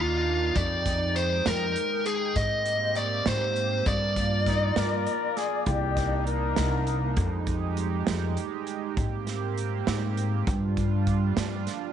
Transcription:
Already playing: upright bass D#2, analog synth pad A#3 D4 D#4, lead electric guitar F4
0.55 upright bass F2, analog synth pad G#3 D#4 G5, lead electric guitar D5, kick, closed hi-hat
0.86 kick, snare, closed hi-hat
1.16 lead electric guitar C5, closed hi-hat
1.46 upright bass F2, lead electric guitar A#4, snare, closed hi-hat
1.76 closed hi-hat
2.06 lead electric guitar G#4, closed hi-hat
2.36 upright bass G#2, analog synth pad A#3 C4 G4, lead electric guitar D#5, kick, closed hi-hat
2.66 closed hi-hat
2.95 lead electric guitar D5, closed hi-hat
3.26 upright bass G#2, lead electric guitar C5, snare, closed hi-hat
3.56 closed hi-hat
3.86 upright bass G2, analog synth pad A#3 F4 D5, lead electric guitar D5, kick, closed hi-hat
4.16 kick, snare, closed hi-hat
4.46 flugelhorn D#4, kick, snare, closed hi-hat
4.76 upright bass G2, flugelhorn A#4, snare, closed hi-hat
5.07 closed hi-hat
5.37 flugelhorn G#4, snare, closed hi-hat
5.66 upright bass C2, analog synth pad A#3 D4 D#4, flugelhorn G4, kick, closed hi-hat
5.97 kick, snare, closed hi-hat
6.27 flugelhorn A#4, closed hi-hat
6.56 upright bass C2, snare, closed hi-hat
6.87 closed hi-hat
7.16 upright bass F2, analog synth pad G#3 D#4 G4, kick, closed hi-hat
7.47 kick, closed hi-hat
7.77 closed hi-hat
8.07 upright bass F2, snare, closed hi-hat
8.37 closed hi-hat
8.67 closed hi-hat
8.97 upright bass G#2, analog synth pad A#3 C4 G4, kick, closed hi-hat
9.27 snare, closed hi-hat
9.57 closed hi-hat
9.87 upright bass G#2, snare, closed hi-hat
10.17 closed hi-hat
10.46 upright bass G2, analog synth pad G3 D4 F4, kick, closed hi-hat
10.77 kick, closed hi-hat
11.07 kick, closed hi-hat
11.37 upright bass G2, snare, closed hi-hat
11.67 snare, closed hi-hat

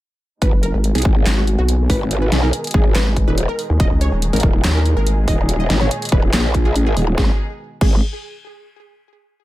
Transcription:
0.42 wobble bass G#1, string section B2 D#3 G#3 D#4 G#4, synth pluck B4, kick, closed hi-hat
0.53 wobble bass F#1
0.63 synth pluck A#4, closed hi-hat
0.74 wobble bass G#1
0.84 closed hi-hat
0.95 wobble bass B1, synth pluck G#4, closed hi-hat
0.98 closed hi-hat
1.02 wobble bass G#1, kick, closed hi-hat
1.26 wobble bass G#1, snare, clap, closed hi-hat
1.37 synth pluck F#4
1.47 closed hi-hat
1.58 wobble bass B1, synth pluck F#4
1.69 closed hi-hat
1.90 wobble bass G#1, synth pluck B4, kick, open hi-hat
2.11 closed hi-hat
2.22 synth pluck B4
2.32 wobble bass B1, snare, closed hi-hat
2.43 synth pluck A#4
2.53 closed hi-hat
2.64 closed hi-hat
2.67 closed hi-hat
2.71 wobble bass G#1, synth pluck G#4, kick, closed hi-hat
2.95 wobble bass G#1, synth pluck B4, snare, clap, closed hi-hat
3.16 kick, closed hi-hat
3.28 wobble bass D#1, synth pluck B4
3.38 closed hi-hat
3.49 synth pluck A#4
3.59 open hi-hat
3.70 wobble bass D#2
3.80 wobble bass D#1, string section A#2 G#4, synth pluck D#5, kick, closed hi-hat
3.91 wobble bass C#2
4.01 synth pluck C#5, closed hi-hat
4.12 wobble bass D#1
4.22 closed hi-hat
4.33 wobble bass G#1, synth pluck A#4, closed hi-hat
4.36 closed hi-hat
4.40 wobble bass D#1, kick, closed hi-hat
4.64 wobble bass D#2, snare, clap, closed hi-hat
4.75 synth pluck A#4
4.86 closed hi-hat
4.97 wobble bass G#1, synth pluck A#4
5.07 closed hi-hat
5.28 wobble bass D#1, synth pluck D#5, kick, open hi-hat
5.49 closed hi-hat
5.60 synth pluck D#5
5.70 wobble bass G#1, snare, closed hi-hat
5.81 synth pluck C#5
5.91 closed hi-hat
6.02 closed hi-hat
6.05 closed hi-hat
6.09 wobble bass D#1, synth pluck B4, kick, closed hi-hat
6.33 wobble bass A#1, synth pluck G#4, snare, clap, closed hi-hat
6.54 kick, closed hi-hat
6.65 synth pluck G#4
6.76 wobble bass A1, closed hi-hat
6.86 synth pluck G#4
6.97 wobble bass D#1, open hi-hat
7.18 wobble bass G#1, string section B2 D#3 G#3 D#4 G#4, synth pluck G#4, kick, snare
7.81 wobble bass G#1, synth pluck G#4, kick, crash

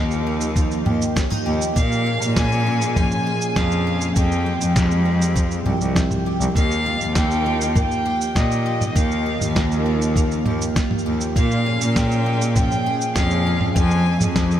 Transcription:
Already playing: cello D#2, twelve-string acoustic guitar D#3 F3 A#3 D#4 G4, ambient pad F3 A#3 D#4 G4
0.11 cabasa
0.27 twelve-string acoustic guitar D#4
0.41 cabasa
0.56 twelve-string acoustic guitar F3, kick, cabasa
0.71 cabasa
0.86 cello D#2, twelve-string acoustic guitar G4, mid tom
1.02 cabasa
1.16 twelve-string acoustic guitar C#4, kick, snare, cabasa
1.30 twelve-string acoustic guitar D#4, mid tom, cabasa
1.46 cello D#2, twelve-string acoustic guitar G4
1.62 cabasa
1.76 twelve-string acoustic guitar A#2, cello A#2, ambient pad F3 C#4 G#4, violin F5, kick, cabasa
1.92 cabasa
2.06 twelve-string acoustic guitar C#4
2.22 cello A#2, cabasa
2.36 twelve-string acoustic guitar G#3, violin G#5, kick, snare, cabasa
2.52 cabasa
2.67 twelve-string acoustic guitar C#4
2.81 cabasa
2.96 twelve-string acoustic guitar F3, violin G#5, kick, mid tom, cabasa
3.11 cabasa
3.27 twelve-string acoustic guitar G#4
3.41 cabasa
3.56 cello F2, twelve-string acoustic guitar C#4, violin F5, kick, snare, cabasa
3.71 cabasa
3.87 twelve-string acoustic guitar G#4
4.01 cabasa
4.16 cello F2, twelve-string acoustic guitar F2, ambient pad G#3 C4 G4, violin G5, kick, cabasa
4.32 cabasa
4.46 twelve-string acoustic guitar C4
4.61 cello F2, cabasa
4.76 twelve-string acoustic guitar G#3, kick, snare, cabasa
4.91 cabasa
5.05 twelve-string acoustic guitar C4
5.22 cabasa
5.36 twelve-string acoustic guitar F3, kick, cabasa
5.51 cabasa
5.66 cello C2, twelve-string acoustic guitar G4, mid tom
5.81 cello C2, cabasa
5.96 twelve-string acoustic guitar C4, kick, snare, cabasa
6.11 mid tom, cabasa
6.26 twelve-string acoustic guitar G4
6.41 cello C2, cabasa
6.56 cello D#2, twelve-string acoustic guitar D#3, ambient pad F3 A#3 D#4, violin F5, kick, cabasa
6.71 cabasa
6.86 twelve-string acoustic guitar F4
7.01 cello D#2, cabasa
7.15 twelve-string acoustic guitar A#3, violin G5, kick, snare, cabasa
7.31 cabasa
7.46 twelve-string acoustic guitar F4
7.61 cabasa
7.75 twelve-string acoustic guitar A#3, violin G5, kick, mid tom, cabasa
7.91 cabasa
8.06 twelve-string acoustic guitar G4
8.21 cabasa
8.36 cello A#2, twelve-string acoustic guitar F4, violin D#5, kick, snare, cabasa
8.51 cabasa
8.66 twelve-string acoustic guitar G4
8.81 mid tom, cabasa
8.96 cello D#2, twelve-string acoustic guitar D#3, violin F5, kick, cabasa
9.11 cabasa
9.26 twelve-string acoustic guitar F4
9.41 cello D#2, mid tom, cabasa
9.56 twelve-string acoustic guitar A#3, kick, snare, cabasa
9.72 cabasa
9.86 twelve-string acoustic guitar F4
10.02 cabasa
10.16 twelve-string acoustic guitar A#3, kick, cabasa
10.31 cabasa
10.46 cello D#2, twelve-string acoustic guitar G4, mid tom
10.61 cabasa
10.76 twelve-string acoustic guitar F4, kick, snare, cabasa
10.91 mid tom
10.98 cabasa
11.06 cello D#2, twelve-string acoustic guitar G4
11.21 cabasa
11.36 cello A#2, twelve-string acoustic guitar A#2, ambient pad F3 C#4 G#4, violin F5, kick, cabasa
11.51 cabasa
11.66 twelve-string acoustic guitar C#4
11.81 cello A#2, cabasa
11.96 twelve-string acoustic guitar G#3, violin G5, kick, snare, cabasa
12.11 cabasa
12.26 twelve-string acoustic guitar C#4
12.41 cabasa
12.56 twelve-string acoustic guitar F3, violin G5, kick, mid tom, cabasa
12.71 cabasa
12.86 twelve-string acoustic guitar G#4
13.01 cabasa
13.16 cello F2, twelve-string acoustic guitar C#4, violin F5, kick, snare, cabasa
13.31 cabasa
13.47 twelve-string acoustic guitar G#4
13.61 mid tom
13.76 twelve-string acoustic guitar F2, cello F2, ambient pad G#3 C4 G#4, violin G#5, kick, cabasa
13.91 cabasa
14.06 twelve-string acoustic guitar C4
14.21 cello F2, mid tom, cabasa
14.36 twelve-string acoustic guitar G#3, kick, snare, cabasa
14.51 cabasa

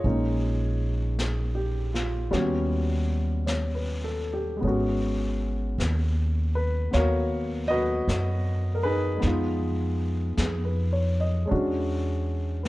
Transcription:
Already playing: grand piano F4 G#4 C#5
0.04 upright bass A#1, grand piano G#3 A#3 C#4 D#4, brush sweep
1.19 grand piano G#4, brush sweep, snare, hi-hat pedal
1.55 grand piano G4
1.94 grand piano F4, snare
2.31 upright bass D#2, grand piano G3 B3 C#4 F#4, brush sweep, snare
3.46 grand piano C#5, brush sweep, snare, hi-hat pedal
3.75 grand piano B4
4.04 grand piano A4
4.33 grand piano G4
4.57 grand piano G#3 B3
4.63 upright bass G#1, grand piano C#4, brush sweep
4.67 grand piano F#4
5.78 upright bass D#2, brush sweep, snare, hi-hat pedal
6.55 grand piano B4
6.91 upright bass D#2, grand piano B3 C#5 F5, brush sweep, snare
6.96 grand piano F#4 A#4
7.68 grand piano F#4 B4 D#5
8.08 upright bass F#2, brush sweep, snare, hi-hat pedal
8.75 grand piano A#4
8.83 grand piano D#4 G#4 B4
9.17 grand piano G#3 B3
9.22 upright bass F2, grand piano D#4, brush sweep, snare
9.27 grand piano F4
10.37 upright bass F2, grand piano G#4, brush sweep, snare, hi-hat pedal
10.65 grand piano B4
10.93 grand piano C#5
11.20 grand piano D#5
11.45 grand piano G#3 C#4 D4
11.51 upright bass E2, grand piano F#4, brush sweep
12.63 grand piano B4

